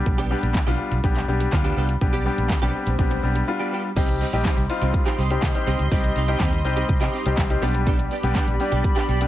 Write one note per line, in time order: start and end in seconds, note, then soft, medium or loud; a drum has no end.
0.00 0.21 G3 medium
0.00 0.22 B3 medium
0.00 0.22 D4 medium
0.00 0.22 G4 medium
0.06 0.33 B1 loud
0.06 muted clean electric guitar stroke soft
0.06 kick loud
0.06 swell medium
0.18 0.29 G3 medium
0.18 0.30 B3 medium
0.18 0.30 D4 medium
0.18 0.31 G4 medium
0.18 closed hi-hat medium
0.30 0.45 G3 medium
0.30 0.60 G3 medium
0.30 0.60 B3 medium
0.30 0.42 B3 medium
0.30 0.61 D4 medium
0.30 0.42 D4 medium
0.30 0.61 G4 medium
0.30 0.41 G4 medium
0.42 0.52 A#1 medium
0.42 muted clean electric guitar stroke medium
0.42 closed hi-hat medium
0.54 muted clean electric guitar stroke soft
0.54 kick loud
0.54 snare medium
0.54 clap loud
0.67 0.76 B1 medium
0.67 0.97 G3 medium
0.67 0.78 G3 medium
0.67 0.97 B3 medium
0.67 0.78 B3 medium
0.67 0.79 D4 medium
0.67 0.97 D4 medium
0.67 0.97 F4 medium
0.67 0.79 G4 medium
0.67 closed hi-hat medium
0.79 muted clean electric guitar stroke soft
0.91 1.00 B1 medium
0.91 muted clean electric guitar stroke soft
0.91 closed hi-hat medium
1.03 1.24 G3 medium
1.03 1.24 B3 medium
1.03 1.24 D4 medium
1.03 1.24 G4 loud
1.03 muted clean electric guitar stroke soft
1.03 kick loud
1.15 muted clean electric guitar stroke soft
1.15 clap medium
1.15 closed hi-hat medium
1.28 1.46 B1 medium
1.28 1.48 G3 medium
1.28 1.48 B3 medium
1.28 1.48 D4 medium
1.28 1.48 G4 loud
1.40 muted clean electric guitar stroke soft
1.40 closed hi-hat medium
1.52 1.70 D2 medium
1.52 1.92 G3 medium
1.52 1.92 B3 medium
1.52 1.92 D4 medium
1.52 1.93 F4 medium
1.52 muted clean electric guitar stroke soft
1.52 kick loud
1.52 snare medium
1.52 clap loud
1.64 1.75 G3 medium
1.64 1.76 B3 medium
1.64 1.77 D4 medium
1.64 1.77 G4 medium
1.64 closed hi-hat medium
1.76 1.95 C2 medium
1.76 1.96 G3 medium
1.76 1.89 B3 medium
1.76 1.88 D4 loud
1.76 1.88 G4 medium
1.89 muted clean electric guitar stroke soft
1.89 closed hi-hat medium
2.01 2.28 B1 loud
2.01 2.21 G3 medium
2.01 2.21 B3 medium
2.01 2.21 D4 medium
2.01 2.21 G4 medium
2.01 muted clean electric guitar stroke soft
2.01 kick loud
2.13 2.24 G3 medium
2.13 2.25 B3 medium
2.13 2.25 D4 medium
2.13 2.26 G4 medium
2.13 closed hi-hat medium
2.25 2.40 G3 medium
2.25 2.55 G3 medium
2.25 2.56 B3 medium
2.25 2.38 B3 medium
2.25 2.56 D4 medium
2.25 2.37 D4 medium
2.25 2.56 G4 medium
2.25 2.36 G4 medium
2.37 2.47 A#1 medium
2.37 muted clean electric guitar stroke soft
2.37 closed hi-hat medium
2.50 muted clean electric guitar stroke soft
2.50 kick loud
2.50 snare medium
2.50 clap loud
2.62 2.71 B1 medium
2.62 2.92 G3 medium
2.62 2.73 G3 medium
2.62 2.92 B3 medium
2.62 2.74 B3 medium
2.62 2.92 D4 medium
2.62 2.74 D4 medium
2.62 2.74 G4 medium
2.62 2.92 G4 loud
2.62 closed hi-hat medium
2.74 muted clean electric guitar stroke soft
2.86 2.96 A#1 medium
2.86 muted clean electric guitar stroke soft
2.86 closed hi-hat medium
2.99 3.17 B1 loud
2.99 3.19 G3 medium
2.99 3.19 B3 medium
2.99 3.19 D4 medium
2.99 3.19 G4 medium
2.99 muted clean electric guitar stroke soft
2.99 kick loud
3.11 muted clean electric guitar stroke medium
3.11 closed hi-hat medium
3.23 3.41 B1 medium
3.23 3.43 G3 medium
3.23 3.43 B3 medium
3.23 3.43 D4 medium
3.23 3.43 G4 medium
3.35 muted clean electric guitar stroke soft
3.35 closed hi-hat medium
3.47 3.87 G3 medium
3.47 3.87 B3 medium
3.47 3.88 D4 medium
3.47 3.88 F4 loud
3.47 muted clean electric guitar stroke soft
3.59 3.70 G3 medium
3.59 3.71 B3 medium
3.59 3.72 D4 medium
3.59 3.72 G4 medium
3.72 3.91 G3 medium
3.72 3.84 B3 medium
3.72 3.83 D4 medium
3.72 3.83 G4 loud
3.84 muted clean electric guitar stroke soft
3.96 4.23 C2 loud
3.96 4.15 G3 medium
3.96 4.26 G3 medium
3.96 4.26 C4 medium
3.96 4.09 C4 loud
3.96 4.26 D#4 medium
3.96 4.08 D#4 medium
3.96 9.28 G4 medium
3.96 4.27 G4 loud
3.96 4.07 G4 medium
3.96 7.59 D#5 medium
3.96 7.59 C6 medium
3.96 kick loud
3.96 crash loud
3.96 shaker medium
4.08 muted clean electric guitar stroke soft
4.08 closed hi-hat medium
4.08 shaker medium
4.21 4.33 G3 medium
4.21 4.33 C4 medium
4.21 4.32 D#4 medium
4.21 4.32 G4 medium
4.21 open hi-hat medium
4.21 shaker soft
4.33 4.42 A#1 medium
4.33 4.63 G3 medium
4.33 4.44 G3 medium
4.33 4.63 C4 medium
4.33 4.45 C4 medium
4.33 4.63 D#4 medium
4.33 4.45 D#4 medium
4.33 4.46 G4 medium
4.33 4.63 G4 medium
4.33 closed hi-hat medium
4.33 shaker medium
4.45 4.64 G3 medium
4.45 4.58 C4 medium
4.45 4.57 D#4 medium
4.45 4.56 G4 medium
4.45 kick loud
4.45 snare medium
4.45 clap loud
4.45 clap medium
4.45 shaker medium
4.57 4.66 C2 medium
4.57 muted clean electric guitar stroke soft
4.57 closed hi-hat medium
4.57 shaker medium
4.70 5.19 G3 medium
4.70 5.19 C4 medium
4.70 5.19 D#4 medium
4.70 5.20 F4 loud
4.70 muted clean electric guitar stroke soft
4.70 open hi-hat medium
4.70 shaker medium
4.82 4.91 C2 medium
4.82 4.93 G3 medium
4.82 4.93 C4 medium
4.82 4.93 D#4 medium
4.82 4.94 G4 medium
4.82 closed hi-hat medium
4.82 shaker medium
4.94 muted clean electric guitar stroke soft
4.94 kick loud
4.94 shaker medium
5.06 5.17 G3 medium
5.06 5.18 C4 medium
5.06 5.18 D#4 medium
5.06 5.19 G4 medium
5.06 clap medium
5.06 closed hi-hat medium
5.06 shaker medium
5.18 5.36 C2 medium
5.18 5.33 G3 medium
5.18 5.31 C4 medium
5.18 5.30 D#4 medium
5.18 5.29 G4 medium
5.18 open hi-hat medium
5.18 shaker soft
5.30 5.50 G3 medium
5.30 5.51 C4 medium
5.30 5.51 D#4 medium
5.30 5.51 G4 medium
5.30 muted clean electric guitar stroke soft
5.30 closed hi-hat medium
5.30 shaker medium
5.42 5.52 C3 loud
5.42 muted clean electric guitar stroke soft
5.42 kick loud
5.42 snare loud
5.42 clap medium
5.42 clap loud
5.42 shaker medium
5.55 5.85 G3 medium
5.55 5.85 C4 medium
5.55 5.85 D#4 medium
5.55 5.85 G4 medium
5.55 muted clean electric guitar stroke soft
5.55 closed hi-hat medium
5.55 shaker medium
5.67 5.76 C2 medium
5.67 5.86 G3 medium
5.67 5.79 C4 medium
5.67 5.79 D#4 loud
5.67 5.78 G4 loud
5.67 open hi-hat medium
5.67 shaker medium
5.79 5.88 C#2 medium
5.79 muted clean electric guitar stroke soft
5.79 closed hi-hat medium
5.79 shaker medium
5.91 6.10 G3 medium
5.91 6.21 G3 medium
5.91 6.03 C4 medium
5.91 6.21 C4 medium
5.91 6.22 D#4 medium
5.91 6.03 D#4 medium
5.91 6.22 G4 medium
5.91 6.02 G4 medium
5.91 kick loud
5.91 shaker medium
6.03 muted clean electric guitar stroke soft
6.03 closed hi-hat medium
6.03 shaker medium
6.15 6.34 C2 loud
6.15 6.28 G3 medium
6.15 6.28 C4 medium
6.15 6.27 D#4 medium
6.15 6.26 G4 medium
6.15 open hi-hat medium
6.15 shaker soft
6.28 6.58 G3 medium
6.28 6.39 G3 medium
6.28 6.58 C4 medium
6.28 6.39 C4 medium
6.28 6.40 D#4 medium
6.28 6.58 D#4 medium
6.28 6.41 G4 medium
6.28 6.58 G4 medium
6.28 closed hi-hat medium
6.28 shaker medium
6.40 6.65 D#2 medium
6.40 6.59 G3 loud
6.40 6.52 C4 loud
6.40 6.52 D#4 medium
6.40 6.51 G4 loud
6.40 kick loud
6.40 snare medium
6.40 clap loud
6.40 clap medium
6.40 shaker medium
6.52 muted clean electric guitar stroke medium
6.52 closed hi-hat medium
6.52 shaker medium
6.65 6.83 C2 medium
6.65 7.14 G3 medium
6.65 7.14 C4 medium
6.65 7.15 D#4 medium
6.65 7.15 G4 loud
6.65 muted clean electric guitar stroke soft
6.65 open hi-hat medium
6.65 shaker soft
6.76 6.87 G3 medium
6.76 6.88 C4 medium
6.76 6.88 D#4 medium
6.76 6.89 G4 medium
6.76 closed hi-hat medium
6.76 shaker medium
6.89 7.07 C3 loud
6.89 muted clean electric guitar stroke soft
6.89 kick loud
6.89 shaker medium
7.01 7.12 G3 medium
7.01 7.12 C4 medium
7.01 7.13 D#4 medium
7.01 7.14 G4 medium
7.01 clap medium
7.01 closed hi-hat medium
7.01 shaker medium
7.13 7.28 G3 medium
7.13 7.25 C4 medium
7.13 7.25 D#4 medium
7.13 7.24 G4 medium
7.13 open hi-hat medium
7.13 shaker soft
7.25 7.35 C2 medium
7.25 7.46 G3 medium
7.25 7.46 C4 medium
7.25 7.46 D#4 medium
7.25 7.46 G4 medium
7.25 muted clean electric guitar stroke medium
7.25 closed hi-hat medium
7.25 shaker medium
7.37 7.56 C2 loud
7.37 muted clean electric guitar stroke soft
7.37 kick loud
7.37 snare medium
7.37 clap loud
7.37 shaker medium
7.50 7.61 G3 medium
7.50 7.62 C4 medium
7.50 7.63 D#4 medium
7.50 7.61 G4 medium
7.50 muted clean electric guitar stroke soft
7.50 closed hi-hat medium
7.50 shaker medium
7.62 8.07 B1 loud
7.62 7.81 G3 medium
7.62 8.12 G3 medium
7.62 8.12 B3 medium
7.62 7.74 B3 loud
7.62 8.12 D4 medium
7.62 7.74 D4 medium
7.62 8.12 G4 loud
7.62 7.73 G4 loud
7.62 9.28 D5 medium
7.62 9.28 B5 loud
7.62 open hi-hat medium
7.62 shaker medium
7.74 muted clean electric guitar stroke medium
7.74 closed hi-hat medium
7.74 shaker medium
7.86 8.06 G3 medium
7.86 7.99 B3 medium
7.86 7.98 D4 medium
7.86 7.97 G4 loud
7.86 kick loud
7.86 shaker medium
7.99 muted clean electric guitar stroke soft
7.99 closed hi-hat medium
7.99 shaker medium
8.11 8.24 G3 medium
8.11 8.23 B3 medium
8.11 8.22 D4 medium
8.11 8.22 G4 medium
8.11 open hi-hat medium
8.11 shaker soft
8.23 8.32 B1 medium
8.23 8.53 G3 medium
8.23 8.34 G3 medium
8.23 8.53 B3 medium
8.23 8.34 B3 medium
8.23 8.35 D4 medium
8.23 8.53 D4 medium
8.23 8.36 G4 medium
8.23 8.53 G4 medium
8.23 closed hi-hat medium
8.23 shaker medium
8.35 8.54 G3 loud
8.35 8.47 B3 medium
8.35 8.47 D4 loud
8.35 8.46 G4 loud
8.35 kick loud
8.35 snare medium
8.35 clap loud
8.35 clap medium
8.35 shaker medium
8.47 8.57 A#1 medium
8.47 muted clean electric guitar stroke medium
8.47 closed hi-hat medium
8.47 shaker medium
8.60 9.10 G3 medium
8.60 9.10 B3 medium
8.60 9.10 D4 medium
8.60 9.10 G4 medium
8.60 muted clean electric guitar stroke soft
8.60 open hi-hat medium
8.60 shaker soft
8.72 8.81 B1 medium
8.72 8.83 G3 medium
8.72 8.83 B3 medium
8.72 8.84 D4 medium
8.72 8.84 G4 medium
8.72 closed hi-hat medium
8.72 shaker medium
8.84 muted clean electric guitar stroke soft
8.84 kick loud
8.84 shaker medium
8.96 9.07 G3 medium
8.96 9.08 B3 medium
8.96 9.08 D4 medium
8.96 9.09 G4 medium
8.96 clap medium
8.96 closed hi-hat medium
8.96 shaker medium
9.08 9.27 B1 medium
9.08 9.23 G3 medium
9.08 9.21 B3 medium
9.08 9.20 D4 medium
9.08 9.19 G4 medium
9.08 open hi-hat medium
9.08 shaker soft
9.20 9.28 G3 medium
9.20 9.28 B3 medium
9.20 9.28 D4 medium
9.20 9.28 G4 medium
9.20 muted clean electric guitar stroke medium
9.20 closed hi-hat medium
9.20 shaker medium